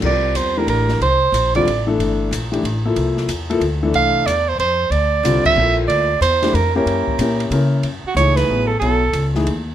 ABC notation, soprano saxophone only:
X:1
M:3/4
L:1/8
Q:"Swing" 1/4=185
K:Cmix
V:1 name="Soprano saxophone"
d2 c B B2 | c3 d2 z | z6 | z6 |
f2 d c c2 | d3 e2 z | d2 c2 B B- | B4 z2 |
[K:Bmix] z F c B2 A | A3 z3 |]